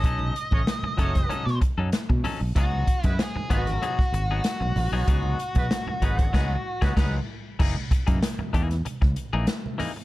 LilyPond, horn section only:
\new Staff \with { instrumentName = "Horn section" } { \time 4/4 \key cis \dorian \tempo 4 = 95 r8. <a cis' fis' cis''>16 r8 <a cis' fis' cis''>8. r4. r16 | r8. <gis b fis' b'>16 r8 <gis b fis' b'>8. r4. r16 | r8. <gis b fis' b'>16 r8 <gis b fis' b'>8 <gis b fis' b'>8 r16 <gis b fis' b'>16 <gis b fis' b'>8 r8 | r1 | }